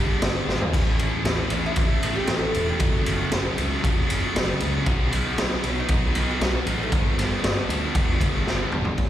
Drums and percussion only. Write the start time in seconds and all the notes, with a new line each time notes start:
0.22 snare, ride
0.49 snare
0.61 floor tom
0.74 kick, ride, crash
0.99 ride
1.25 snare, ride
1.50 ride
1.76 kick, ride
2.03 ride
2.27 snare, ride
2.54 ride
2.80 kick, ride
3.06 ride
3.31 snare, ride
3.58 ride
3.84 kick, ride
4.10 ride
4.36 snare, ride
4.49 snare
4.60 ride
4.86 kick, ride
5.12 ride
5.38 snare, ride
5.51 snare
5.63 ride
5.88 kick, ride
6.15 ride
6.41 snare, ride
6.67 ride
6.92 kick, ride
7.19 snare, ride
7.44 snare, ride
7.70 ride
7.95 kick, ride
8.21 kick, ride
8.47 snare
8.72 mid tom
8.85 floor tom
8.98 kick, floor tom, crash